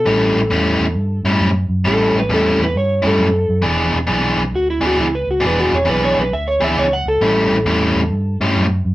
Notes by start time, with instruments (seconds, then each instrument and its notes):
Already playing: electric slide guitar A4
0.06 fingered electric bass A1, overdriven electric guitar A2 G3 C#4 E4
0.35 fingered electric bass A1
0.50 fingered electric bass E2, overdriven electric guitar A2 G3 C#4 E4
0.79 fingered electric bass E2
0.95 fingered electric bass G2
1.23 fingered electric bass G2, overdriven electric guitar A2 G3 C#4 E4
1.40 fingered electric bass F#2
1.68 fingered electric bass F#2
1.84 fingered electric bass A1, overdriven electric guitar A2 G3 C#4 E4, electric slide guitar A4
2.14 fingered electric bass A1
2.19 electric slide guitar B4
2.29 fingered electric bass E2, overdriven electric guitar A2 G3 C#4 E4
2.34 electric slide guitar A4
2.59 fingered electric bass E2
2.64 electric slide guitar B4
2.74 fingered electric bass G2, electric slide guitar C#5
3.02 fingered electric bass G2, overdriven electric guitar A2 G3 C#4 E4
3.07 electric slide guitar A4
3.19 fingered electric bass F#2
3.49 fingered electric bass F#2
3.62 fingered electric bass E1, overdriven electric guitar E3 B3 D4 G#4
3.94 fingered electric bass E1
4.07 fingered electric bass B1, overdriven electric guitar E3 B3 D4 G#4
4.37 fingered electric bass B1
4.52 fingered electric bass D2, electric slide guitar F#4
4.70 electric slide guitar E4
4.81 fingered electric bass D2, overdriven electric guitar E3 B3 D4 G#4
4.87 electric slide guitar F#4
4.98 fingered electric bass C#2, electric slide guitar E4
5.15 electric slide guitar B4
5.27 fingered electric bass C#2, electric slide guitar F#4
5.40 fingered electric bass E1, overdriven electric guitar E3 B3 D4 G#4
5.47 electric slide guitar B4
5.60 electric slide guitar F#4
5.72 fingered electric bass E1, electric slide guitar C#5
5.85 fingered electric bass B1, overdriven electric guitar E3 B3 D4 G#4
5.89 electric slide guitar B4
6.04 electric slide guitar C#5
6.17 fingered electric bass B1, electric slide guitar B4
6.32 fingered electric bass D2, electric slide guitar E5
6.48 electric slide guitar C#5
6.61 fingered electric bass D2, overdriven electric guitar E3 B3 D4 G#4, electric slide guitar E5
6.77 fingered electric bass C#2, electric slide guitar C#5
6.93 electric slide guitar F#5
7.05 fingered electric bass C#2, electric slide guitar A4
7.21 fingered electric bass A1, overdriven electric guitar A2 G3 C#4 E4
7.50 fingered electric bass A1
7.65 fingered electric bass E2, overdriven electric guitar A2 G3 C#4 E4
7.95 fingered electric bass E2
8.11 fingered electric bass G2
8.40 fingered electric bass G2, overdriven electric guitar A2 G3 C#4 E4
8.55 fingered electric bass F#2
8.85 fingered electric bass F#2